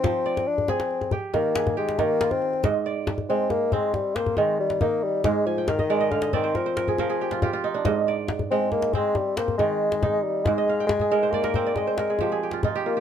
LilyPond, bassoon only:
\new Staff \with { instrumentName = "Bassoon" } { \clef bass \time 12/8 \key aes \lydian \tempo 4. = 92 c'4 d'8 c'4 r8 bes4 aes8 bes8. c'8. | r4. c'8 bes8 aes8 g8 bes8 aes8 g8 bes8 g8 | aes8 f8 ees4 d8 ees8 f2~ f8 r8 | r4. c'8 bes8 aes8 g8 bes8 aes4. g8 |
aes4 aes4 bes4 aes2 r8 bes8 | }